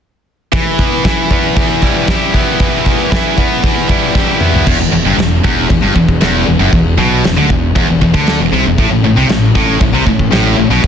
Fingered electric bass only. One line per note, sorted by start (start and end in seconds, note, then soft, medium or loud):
4.67 4.79 E1 medium
4.79 4.91 E1 medium
4.93 5.04 E1 medium
5.05 5.17 G1 medium
5.18 5.42 E1 medium
5.44 5.68 E1 loud
5.71 5.82 E1 medium
5.84 5.95 G1 medium
5.96 6.20 E1 medium
6.22 6.46 E1 loud
6.48 6.59 E1 medium
6.60 6.72 F#1 medium
6.73 6.97 E1 medium
6.98 7.22 B1 loud
7.25 7.36 E1 medium
7.37 7.49 D2 medium
7.50 7.74 E1 medium
7.76 7.87 E1 medium
7.89 8.01 E1 medium
8.02 8.14 E1 medium
8.14 8.38 D2 medium
8.40 8.52 E1 medium
8.52 8.64 C2 medium
8.65 8.77 E1 medium
8.79 8.90 A1 medium
8.92 9.03 A1 medium
9.04 9.16 A1 medium
9.17 9.29 C2 medium
9.30 9.53 A1 medium
9.55 9.79 A1 medium
9.81 9.93 A1 medium
9.93 10.05 C2 loud
10.07 10.30 A1 medium
10.31 10.56 A1 loud
10.58 10.70 A1 medium
10.70 10.82 B1 medium
10.84 10.87 A1 medium